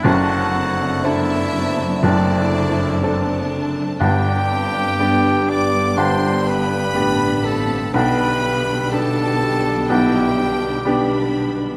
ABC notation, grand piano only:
X:1
M:4/4
L:1/8
Q:1/4=61
K:G
V:1 name="Grand piano"
[F,,,F,,]2 [CDA]2 [F,,,F,,]2 [CDA]2 | [G,,,G,,]2 [B,DG]2 [G,,,G,,]2 [B,DG]2 | [B,,,B,,]2 [B,DG]2 [B,,,B,,]2 [B,DG]2 |]